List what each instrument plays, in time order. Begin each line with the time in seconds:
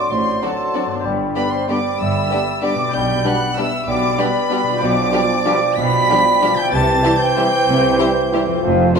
Already playing: harp A2 C4 D4 F#4, clarinet D5, trumpet section D5, flute section C6, violin section D6
0.10 double bass section A1, cello section A2, bassoon F#3, trumpet section C5, clarinet D5, flute section C6, violin section C6
0.42 trombone section D3 F#3, bassoon F#3, viola section C4 D4, french horn section C4 D4, violin section F#4 D5 A5, trumpet section A4, clarinet D5, flute section C6
0.73 trombone section D3 F#3, french horn section C4 D4, viola section C4 D4, violin section F#4 D5
0.86 harp G2
0.91 harp B3
0.95 harp D4
1.00 harp G4
1.04 double bass section G1, cello section G2, bassoon G3, clarinet D5, flute section B5
1.35 trombone section D3 G3, bassoon G3, french horn section B3 D4, viola section B3 D4, violin section G4 D5 B5, trumpet section B4, clarinet D5, flute section B5
1.52 trumpet section C5, violin section C6
1.68 trombone section D3 G3, bassoon G3, french horn section B3 D4, viola section B3 D4, violin section G4 D5 D6, trumpet section D5, clarinet D5, flute section B5
1.99 double bass section G1, cello section G2, trumpet section E5, violin section E6
2.30 trombone section D3 G3, french horn section B3 D4, viola section B3 D4, violin section G4 D5
2.62 trombone section D3 G3, bassoon G3, french horn section B3 D4, viola section B3 D4, violin section G4 D5 D6, trumpet section D5, clarinet D5, flute section B5
2.75 harp B2
2.80 harp B3
2.84 harp D4
2.88 harp G4
2.93 double bass section B1, cello section B2, bassoon G3, clarinet D5, trumpet section G5, flute section B5, violin section G6
3.25 trombone section B2 G3, viola section G3 D4, french horn section B3 D4, violin section G4 D5 F#6, trumpet section F#5
3.56 trombone section B2 G3, viola section G3 D4, french horn section B3 D4, violin section G4 D5 E6, trumpet section E5
3.88 double bass section B1, cello section B2, bassoon G3, clarinet D5, trumpet section D5, flute section B5, violin section D6
4.18 trombone section B2 G3, bassoon G3, viola section G3 D4, french horn section B3 D4, violin section G4 D5 B5, trumpet section B4, clarinet D5, flute section B5
4.50 trombone section B2 G3, viola section G3 D4, french horn section B3 D4, violin section G4 D5
4.63 harp B2
4.67 harp D4
4.72 harp F4
4.76 harp G4
4.81 double bass section B1, cello section B2, bassoon F3, trumpet section D5, clarinet D5, flute section G5, violin section D6
5.12 trombone section B2 G3, viola section F3 D4, french horn section D4 F4, violin section G4 D5
5.45 trombone section B2 G3, viola section F3 D4, french horn section D4 F4, violin section G4 D5
5.77 double bass section B1, cello section B2, bassoon F3, clarinet D5, flute section G5, trumpet section B5, violin section B6
6.09 trombone section B2 G3, viola section F3 D4, french horn section D4 F4, violin section G4 D5
6.41 trombone section B2 G3, viola section F3 D4, french horn section D4 F4, violin section G4 D5
6.54 harp C3, trumpet section G5, violin section G6
6.59 harp C4
6.63 harp E4
6.68 harp G4
6.72 double bass section C2, cello section C3, bassoon E3, clarinet C5, flute section G5, trumpet section A5, violin section A6
7.02 trombone section C3 G3, viola section E3 E4, french horn section C4 E4, violin section G4 C5
7.20 trumpet section G5, violin section G6
7.35 trombone section C3 G3, viola section E3 E4, french horn section C4 E4, violin section G4 C5
7.68 double bass section C2, cello section C3
7.98 trombone section C3 G3, viola section E3 E4, french horn section C4 E4, violin section G4 C5
8.32 trombone section C3 G3, viola section E3 E4, french horn section C4 E4, violin section G4 C5
8.46 harp F2
8.50 harp C4
8.55 harp F4
8.63 double bass section F1, cello section F2, trombone section C3 F3, bassoon F3, french horn section C4 F4, clarinet C5, flute section F5
8.95 trombone section C3 F3, bassoon F3, viola section F3 C4, french horn section C4 F4, violin section F4 C5 A5, trumpet section A4, clarinet C5, flute section F5